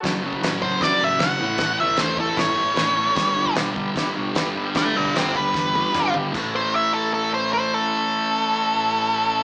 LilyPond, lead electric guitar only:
\new Staff \with { instrumentName = "Lead electric guitar" } { \time 4/4 \key a \mixolydian \tempo 4 = 152 r4. c''8 d''8 e''8 fis''4~ | fis''8 e''8 c''8 a'8 cis''2~ | cis''4 r2. | <e'' a''>8 <b' g''>8 <g' e''>8 b'2 r8 |
r8 c''8 e''8 a'8 a'8 c''8 c''8 a'8~ | a'1 | }